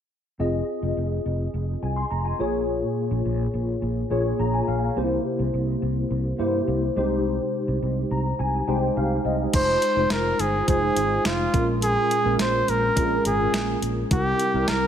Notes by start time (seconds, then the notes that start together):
0.39 F1 C4 F4 G#4 D#5
0.82 F1
0.97 F1
1.26 F1
1.54 F1
1.82 C2 G#5
1.96 C6
2.11 F1 A#5
2.25 G#5
2.39 A#1 A#2 A#3 F4 G#4 C#5
3.11 A#1
3.25 A#1
3.54 A#1
3.82 A#1
4.10 A#1 A#3 F4 G#4 C#5
4.39 A#1 A#5
4.54 G#5
4.68 A#1 F5
4.96 C2 C3 A#3 C#4 G4 C5
5.03 E4
5.39 C2
5.54 C2
5.82 C2
6.11 C2
6.38 G2 A#3 E4 G4 C5
6.67 C2
6.96 C2 C3 G#3 D#4 G4 C5
7.68 C2
7.82 C2
8.11 C2 A#5
8.39 C2 G#5
8.67 C2 G#3 D#4 G4 C5 G5
8.96 C2 F5
9.24 C2 D#5
9.53 F1 G#3 D#4 F4 C5, kick, closed hi-hat, crash
9.82 closed hi-hat
9.96 F1 G#3 D#4 F4 C5
10.10 F1 A#4, snare, closed hi-hat
10.39 G1 G#4, closed hi-hat
10.67 F1 G#3 D#4 F4 G#4 C5, kick, closed hi-hat
10.96 G#1, closed hi-hat
11.25 F1 F4, snare, closed hi-hat
11.53 A#1 A#2 G#3 C#4 F4 A#4, kick, closed hi-hat
11.82 G#4, closed hi-hat
12.11 closed hi-hat
12.24 A#1 G#3 C#4 F4 A#4
12.39 A#1 C5, snare, closed hi-hat
12.68 A#1 A#4, closed hi-hat
12.96 A#1 G#3 C#4 F4 G#4, kick, closed hi-hat
13.03 A#4
13.25 G#1 G#4, closed hi-hat
13.53 A#1, snare, closed hi-hat
13.82 A#1, closed hi-hat
14.11 C2 C3 G3 C4 E4 G4 A#4, kick, closed hi-hat
14.39 closed hi-hat
14.53 C2 G3 C4 E4 A#4
14.68 C2 A#4, snare, closed hi-hat